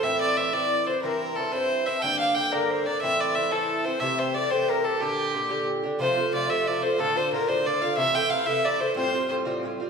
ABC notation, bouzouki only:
X:1
M:6/8
L:1/8
Q:3/8=121
K:Gdor
V:1 name="Bouzouki"
[A,,E,CE]2 [A,,E,CE] [A,,E,CE]2 [E,CE] | [G,,E,CE]2 [G,,E,CE] [G,,E,CE]2 [E,CE] | [G,,D,B,D]2 [G,,D,B,D] [G,,D,B,D]2 [D,B,D] | [A,,E,CE]2 [A,,E,CE] [A,,E,CE]2 [E,CE] |
[C,E,A,G]2 [C,E,A,G] [C,E,A,G]2 [E,A,G] | [B,,D,DG]2 [B,,D,DG] [B,,D,DG]2 [D,DG] | [C,F,A,F] [F,A,F] [C,F,A,F] [C,F,A,F] [C,F,A,F] [F,A,F] | [A,,D,DF] [D,DF] [A,,D,DF] [A,,D,DF] [A,,D,DF] [D,DF] |
[C,E,A,E] [E,A,E] [C,E,A,E] [C,E,A,E] [C,E,A,E] [E,A,E] | [A,,G,CF] [G,CF] [A,,G,CF] [A,,G,CF] [A,,G,CF] [G,CF] |]